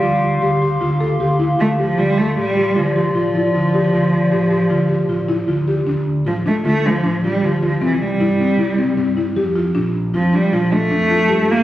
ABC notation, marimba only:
X:1
M:5/4
L:1/8
Q:1/4=155
K:Dm
V:1 name="Marimba"
F2 G G F A G E F G | F2 G G F G F E F G | F2 G G F G F E F G | D2 F D F D D F G F |
C2 E C E C C E G F | D2 F D F D D F G F |]